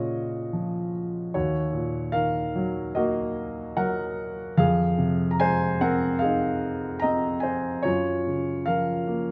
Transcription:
grand piano
Already playing: A#2 C#3 G#3 C#4 F4 F#4 G#4 C#5 D#5 F5
0.53 F3
1.34 D#2 F#4 C#5
1.73 A#2
2.12 D#3 A#4 F5
2.56 F#3
2.95 A#3 F#4 D#5
3.77 F#3 A#4 F#5
4.57 F2 G#4 F5
4.98 C3
5.31 A#5
5.40 G#3 C5 G#5
5.81 C4 A#4 F#5
6.19 G#4 F5
6.24 D#4
7.00 C4 D#5 A#5
7.40 C5 G#5
7.83 F#2 F4 C#5
8.27 C#3
8.66 F3 A#4 F5
9.07 A#3

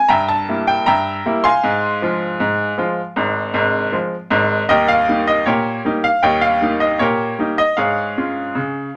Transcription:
grand piano
0.08 G2 E5 G5 A#5
0.28 A5
0.49 G3 A#3 E4
0.67 G5
0.86 G2 E5 G5 A#5
1.26 G3 A#3 E4
1.44 F5 G#5 C6
1.64 G#2
2.02 F3 G#3 F4
2.40 G#2
2.78 F3 G#3 F4
3.16 G#1 G#2
3.54 G#1 G#2
3.92 F3 G#3 F4
4.31 G#1 G#2
4.69 D#2 G3 G4 A#4 D#5
4.88 F5
5.08 G3 A#3 D#4
5.27 D#5
5.46 A#2 G4 A#4 C#5
5.85 G3 A#3 D#4
6.04 F5
6.23 D#2 G3 C#5 D#5 G5
6.41 F5
6.61 G3 A#3 D#4
6.80 D#5
6.99 A#2 G4 A#4 C#5
7.39 G3 A#3 D#4
7.58 D#5
7.77 G#2 G#4 C#5 F5
8.17 G#3 C#4 F4
8.55 C#3

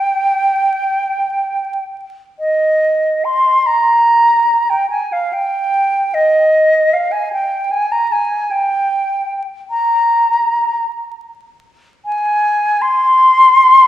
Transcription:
flute
Already playing: G5
2.39 D#5
3.24 C6
3.66 A#5
4.69 G5
4.90 G#5
5.12 F5
5.33 G5
6.14 D#5
6.93 F5
7.11 G#5
7.32 G5
7.71 G#5
7.91 A#5
8.12 G#5
8.50 G5
9.70 A#5
12.05 G#5
12.81 C6

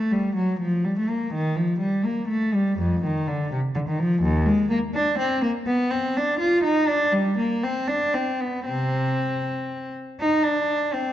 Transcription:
cello
Already playing: A3
0.12 G3
0.36 F#3
0.60 F3
0.84 G3
0.98 A3
1.09 A#3
1.33 D#3
1.56 F3
1.79 G3
2.04 A#3
2.28 A3
2.54 G3
2.78 F2
3.04 D#3
3.27 D3
3.51 C3
3.75 D3
3.88 D#3
3.99 F3
4.22 D#2
4.45 G#3
4.70 A#3
4.94 D4
5.18 C4
5.42 A#3
5.66 B3
5.90 C4
6.16 D4
6.39 F4
6.63 D#4
6.87 D4
7.12 G3
7.37 A#3
7.63 C4
7.87 D4
8.14 C4
8.40 B3
8.65 C3 C4
10.20 D#4
10.43 D4
10.93 C4

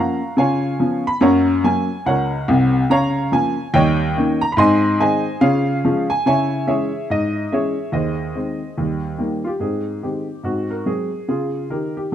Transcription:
upright piano
Already playing: F3 A#3 C#4 A#5
0.00 F5 F#5
0.37 C#3 F4 C#5 F5 G#5
0.80 F3 B3 C#4
1.07 B5
1.21 F#2 A#3 C#5 F#5 A#5
1.64 F#3 A#3 C#4 G#5
2.06 C#2 A#4 C#5 F#5
2.48 C2 C3
2.90 C#3 C#5 F5 A#5
3.32 F3 A#3 C#4 G#5
3.74 D#2 G3 C#5 D#5 G5
4.17 D#3 A#3 C#4
4.41 A#5
4.52 B5
4.57 G#2 C4 D#5 G#5 C6
5.00 D#3 G#3 C4 C5 D#5 G#5
5.41 C#3 F4 G#4 C#5 F5
5.84 F3 G#3 C#4
6.10 G#5
6.26 C#3 E4 C#5 E5 G#5
6.67 E3 G#3 C#4 G#4 C#5 E5
7.10 G#2 D#5
7.52 E3 G#3 C#4 G#4 C#5 E5
7.92 D#2 G#4 C5 D#5
8.35 D#3 G#3 C4
8.78 D#2 G3
9.18 D#3 G3 A#3
9.44 F4 G4
9.60 G#2 C4 G#4
10.03 D#3 G#3 C4 G4
10.43 G#2 C4 F#4
10.70 A#4
10.86 F#3 G#3 C4 G#4
11.28 C#3 F4 G#4
11.70 D#3 G4 A#4
11.97 G4

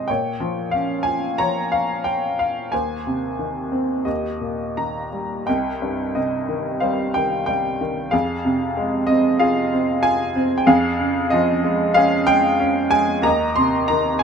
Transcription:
upright piano
Already playing: C3 F3 G#3 G#4 C5 C#5 D#5
0.08 A#2 C#5 G5
0.40 F3
0.71 C#4 F5
1.03 F4 G#5
1.38 F3 C#5 A#5
1.72 F5
2.04 G5
2.39 F5
2.72 D#2 C5 G#5
3.07 C3
3.39 D#3
3.72 C4
4.05 D#2 G4 D#5
4.41 A#2
4.77 D#3 A#5
5.13 G3
5.46 C2 D#5 G5
5.82 G2
6.15 C3 D#5
6.49 D#3
6.80 G3 C5 F5
7.14 D#3 G5
7.46 G3 G5
7.81 D#3
8.11 F2 G#4 F5
8.45 C3
8.77 G#3
9.07 C4 D#5
9.39 F4 G#4 F5
9.73 C4
10.03 F4 G#5
10.36 C4
10.58 G5
10.67 F2 G#4 F5
10.99 C#3
11.30 F3 D#5
11.64 G#3
11.94 C#4 G#4 F5
12.27 G#3 G5
12.60 C#4
12.91 G#3 G#5
13.22 D#2 D#5 A#5
13.56 C3 C6
13.88 D#3 A#5
14.19 G#5

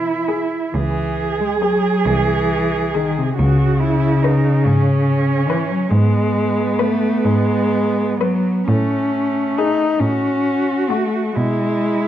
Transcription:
cello
Already playing: B2 E3 E4
0.28 G#4
0.73 C#2 E3 G#4
1.40 G#3
1.61 F#3 G#4
2.05 C2 E3
2.94 D#3 G#4
3.18 C3
3.36 C#2 C#3 F#4
3.80 E4
4.22 D#4 B4
4.65 G#2 C#4
5.48 E3 B4
5.71 F#3
5.91 G#2 G#3 B3
6.79 A3 B4
7.24 G#2 G#3
8.20 F#3 B4
8.68 A2 A3 C#4
9.57 D#4 G#4
10.00 A2 C#4 F#4
10.90 A3 F#4
11.35 B2 G#3 E4

